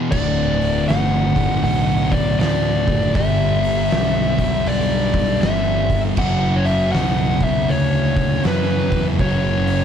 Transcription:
0.00 0.11 E2 medium
0.00 0.11 B2 loud
0.00 0.11 E3 medium
0.10 0.86 D1 loud
0.10 1.32 D2 medium
0.10 1.33 A2 medium
0.10 1.34 D3 loud
0.10 0.83 D5 medium
0.10 kick loud
0.10 crash loud
0.61 open hi-hat medium
0.88 1.62 G1 medium
0.88 1.63 F#5 medium
0.88 snare loud
0.88 open hi-hat medium
1.36 2.37 D2 medium
1.36 2.39 A2 medium
1.36 2.38 D3 medium
1.36 kick medium
1.36 open hi-hat medium
1.64 2.37 B1 loud
1.64 2.13 F#5 loud
1.64 open hi-hat medium
2.11 2.38 D5 medium
2.11 kick loud
2.11 open hi-hat medium
2.38 3.13 D2 medium
2.38 2.87 D2 medium
2.38 3.14 A2 medium
2.38 3.14 D3 medium
2.38 3.11 D5 loud
2.38 snare loud
2.38 open hi-hat medium
2.88 3.14 F#1 medium
2.88 kick medium
2.88 open hi-hat medium
3.15 3.88 G1 loud
3.15 4.36 G2 medium
3.15 4.37 D3 loud
3.15 4.38 G3 loud
3.15 4.72 E5 medium
3.15 kick loud
3.15 open hi-hat loud
3.64 open hi-hat medium
3.91 4.65 B1 medium
3.91 snare loud
3.91 open hi-hat medium
4.39 5.41 G2 medium
4.39 5.42 D3 medium
4.39 5.41 G3 medium
4.39 kick medium
4.39 open hi-hat medium
4.67 5.40 B1 loud
4.67 5.39 D5 loud
4.67 open hi-hat medium
5.14 kick medium
5.14 open hi-hat medium
5.41 6.16 G1 medium
5.41 6.16 G2 medium
5.41 6.17 D3 medium
5.41 6.18 G3 medium
5.41 6.00 E5 medium
5.41 snare loud
5.41 open hi-hat medium
5.90 kick medium
5.90 open hi-hat medium
6.17 6.91 F#1 loud
6.17 7.43 F#2 medium
6.17 7.39 C#3 medium
6.17 7.40 F#3 loud
6.17 6.58 F#5 medium
6.17 kick loud
6.17 crash loud
6.56 6.66 C#5 medium
6.65 6.91 E5 loud
6.65 open hi-hat medium
6.92 7.67 B1 medium
6.92 7.42 F#5 loud
6.92 snare loud
6.92 open hi-hat medium
7.40 8.44 F#2 medium
7.40 8.43 C#3 medium
7.40 8.48 F#3 medium
7.40 7.71 E5 loud
7.40 kick medium
7.40 open hi-hat medium
7.69 8.42 D2 loud
7.69 8.41 C#5 loud
7.69 open hi-hat medium
8.17 kick loud
8.17 open hi-hat medium
8.43 8.91 F#2 medium
8.43 9.18 F#2 medium
8.43 9.19 C#3 medium
8.43 snare loud
8.43 open hi-hat medium
8.48 9.22 F#3 medium
8.48 9.04 B4 loud
8.92 9.19 E2 loud
8.92 kick medium
8.92 open hi-hat medium
9.19 9.85 F#1 loud
9.19 9.85 F#2 medium
9.19 9.85 C#3 medium
9.19 9.85 F#3 loud
9.19 9.85 C#5 loud
9.19 kick loud
9.19 open hi-hat medium
9.67 open hi-hat medium

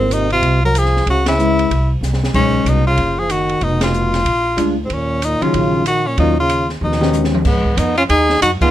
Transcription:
0.00 0.39 G#1 medium
0.00 0.13 G#2 medium
0.00 0.26 F3 soft
0.00 0.26 A#3 medium
0.00 0.14 C4 medium
0.00 0.27 C4 medium
0.11 0.31 C3 medium
0.11 0.31 D#4 medium
0.11 hi-hat pedal medium
0.11 ride soft
0.30 0.61 C3 medium
0.30 0.61 F4 medium
0.30 ride soft
0.42 1.03 C2 medium
0.42 kick soft
0.42 ride medium
0.63 0.77 F#3 medium
0.63 0.80 A#4 medium
0.75 1.07 F3 medium
0.75 1.08 G#4 medium
0.75 hi-hat pedal medium
0.75 ride medium
0.85 snare soft
0.96 snare soft
1.06 1.67 C#2 medium
1.06 1.25 C#3 medium
1.06 1.26 F#4 medium
1.06 kick soft
1.06 ride soft
1.26 1.67 C#3 medium
1.26 1.90 E4 medium
1.26 snare medium
1.26 ride medium
1.38 1.70 G#3 medium
1.38 1.70 B3 medium
1.38 1.71 E4 medium
1.38 hi-hat pedal soft
1.59 ride soft
1.70 2.00 C2 medium
1.70 kick soft
1.70 ride medium
2.01 2.31 C2 medium
2.01 snare soft
2.01 hi-hat pedal soft
2.13 snare soft
2.24 snare medium
2.34 2.63 B1 medium
2.34 2.69 G#2 medium
2.34 2.82 G#3 soft
2.34 2.82 C#4 soft
2.34 2.70 C#4 medium
2.34 2.82 D#4 medium
2.34 kick medium
2.34 crash medium
2.65 2.95 C2 medium
2.65 2.86 B2 medium
2.65 hi-hat pedal medium
2.65 ride medium
2.69 2.86 D#4 medium
2.87 3.20 C#3 medium
2.87 3.20 F4 medium
2.97 3.58 F#1 medium
2.97 kick soft
2.97 ride soft
3.19 3.33 F3 medium
3.19 3.33 G#4 medium
3.30 3.64 D#3 medium
3.30 3.65 F#4 medium
3.30 hi-hat pedal soft
3.30 ride medium
3.49 ride soft
3.61 4.22 F1 medium
3.61 3.82 B2 medium
3.61 3.82 D#4 medium
3.61 kick soft
3.61 ride soft
3.81 4.23 B2 medium
3.81 4.74 F4 loud
3.81 snare medium
3.81 ride medium
3.94 hi-hat pedal soft
4.13 snare soft
4.13 ride soft
4.25 4.55 A#1 medium
4.25 kick soft
4.25 ride medium
4.56 4.87 D2 medium
4.56 4.75 G#3 soft
4.56 4.75 D4 medium
4.56 4.75 F4 medium
4.56 hi-hat pedal medium
4.56 ride medium
4.85 4.94 G#2 medium
4.85 4.94 C4 medium
4.90 5.38 D#2 medium
4.90 5.23 A#2 medium
4.90 5.26 C#4 medium
4.90 kick soft
4.90 ride soft
5.22 5.45 A#2 medium
5.22 5.44 D#4 medium
5.22 hi-hat pedal medium
5.22 ride medium
5.41 5.86 C#3 medium
5.41 5.83 D#3 medium
5.41 5.83 F#3 medium
5.41 5.83 C#4 medium
5.41 5.83 F4 medium
5.41 5.86 F4 medium
5.41 muted upright bass stroke soft
5.41 ride soft
5.54 6.14 A#1 medium
5.54 kick soft
5.54 ride soft
5.86 6.08 D#3 medium
5.86 6.09 F#4 medium
5.86 hi-hat pedal medium
5.86 ride medium
6.07 6.18 A#2 medium
6.07 6.18 C#4 medium
6.17 6.78 D#2 medium
6.17 6.37 A#2 medium
6.17 6.35 D#3 medium
6.17 6.36 F#3 medium
6.17 6.36 C#4 medium
6.17 6.37 D#4 medium
6.17 6.36 F4 medium
6.17 kick soft
6.17 ride soft
6.39 6.68 C#3 medium
6.39 6.68 F4 medium
6.50 hi-hat pedal soft
6.50 ride medium
6.69 snare soft
6.81 7.42 D#2 medium
6.81 7.31 B2 medium
6.81 7.31 D#4 medium
6.81 mid tom soft
6.92 snare soft
7.00 7.42 D#3 medium
7.00 7.42 B3 medium
7.00 7.43 C#4 medium
7.00 7.43 G4 medium
7.00 snare medium
7.13 hi-hat pedal medium
7.13 high tom medium
7.24 snare medium
7.34 mid tom medium
7.45 7.76 G#2 medium
7.45 7.79 G#3 medium
7.45 7.80 B3 medium
7.45 kick medium
7.45 snare soft
7.45 crash medium
7.65 kick medium
7.77 8.08 F2 medium
7.77 7.97 B3 medium
7.77 7.97 D#4 medium
7.77 kick soft
7.77 hi-hat pedal soft
7.77 ride medium
7.97 8.03 C#4 medium
7.97 8.03 F4 medium
7.97 ride soft
8.09 8.40 D#2 medium
8.09 8.39 D#4 medium
8.09 8.39 G#4 loud
8.09 kick soft
8.09 ride medium
8.30 snare medium
8.41 8.59 F#2 medium
8.41 8.50 D#4 medium
8.41 8.51 F#4 medium
8.41 kick soft
8.41 hi-hat pedal medium
8.41 ride medium
8.61 8.71 F3 soft
8.61 8.71 B3 medium
8.61 8.71 D#4 medium
8.61 8.71 F4 loud
8.61 8.71 G#4 medium
8.61 muted upright bass stroke soft
8.61 kick medium
8.61 crash medium

